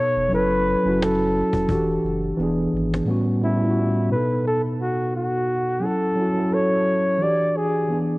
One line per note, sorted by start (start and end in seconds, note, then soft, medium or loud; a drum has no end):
0.00 0.33 B2 medium
0.00 0.33 B3 medium
0.00 0.33 D#4 medium
0.00 0.33 A4 medium
0.00 0.33 C#5 loud
0.00 cajon slap soft
0.16 0.29 E1 medium
0.29 0.76 F#1 loud
0.29 0.68 F#3 medium
0.29 0.69 C#4 medium
0.29 0.70 E4 medium
0.33 0.71 A4 medium
0.33 1.04 B4 loud
0.33 cajon slap soft
0.67 cajon slap soft
0.83 1.43 F#1 medium
0.83 1.46 F#3 medium
0.83 1.47 C#4 medium
0.83 1.48 E4 medium
0.83 cajon slap soft
0.89 1.49 F#4 medium
1.03 2.39 A4 medium
1.03 cajon slap loud
1.37 cajon slap soft
1.53 1.66 E1 medium
1.53 cajon bass medium
1.68 1.98 E1 loud
1.68 2.35 E3 medium
1.68 2.38 D4 medium
1.68 2.39 F#4 medium
1.68 cajon bass medium
1.73 2.40 G4 medium
2.04 2.33 F#1 medium
2.04 cajon slap soft
2.24 cajon slap soft
2.37 2.67 E1 loud
2.37 2.94 E3 medium
2.37 2.95 B3 medium
2.37 2.96 D4 medium
2.37 cajon slap soft
2.43 2.97 G#4 medium
2.73 3.02 G#1 medium
2.73 cajon slap soft
2.94 cajon slap medium
3.05 3.32 A2 medium
3.05 3.33 G3 medium
3.05 3.34 B3 medium
3.09 3.34 C#4 medium
3.09 3.35 F#4 medium
3.41 3.55 A2 medium
3.41 3.56 G3 medium
3.41 3.57 B3 medium
3.41 4.07 E4 medium
3.45 3.57 C#4 medium
3.45 3.58 E4 medium
3.58 4.09 A2 medium
3.58 4.10 G3 medium
3.58 4.11 B3 medium
3.62 4.11 C#4 medium
3.62 3.68 F4 medium
3.71 4.16 F#4 medium
4.10 5.21 B2 medium
4.10 5.22 B3 medium
4.10 4.43 B4 medium
4.14 5.23 D#4 medium
4.14 5.24 A4 medium
4.47 4.62 A4 medium
4.81 5.13 F#4 medium
5.16 5.86 F#4 medium
5.80 6.08 F#3 medium
5.80 6.09 C#4 medium
5.80 6.10 E4 medium
5.85 6.55 A4 medium
5.85 6.11 A4 medium
6.15 6.30 F#3 medium
6.15 6.31 C#4 medium
6.15 6.32 E4 medium
6.21 6.33 F#4 medium
6.33 7.19 F#3 medium
6.33 7.20 C#4 medium
6.33 7.21 E4 medium
6.40 7.22 A4 medium
6.54 7.24 C#5 loud
7.18 7.76 E3 medium
7.18 7.77 D4 medium
7.18 7.78 F#4 medium
7.22 7.79 G4 medium
7.22 7.58 D5 loud
7.57 7.99 G#4 medium
7.88 8.19 E3 medium
7.88 8.19 B3 medium
7.92 8.19 D4 medium
7.92 8.19 G#4 medium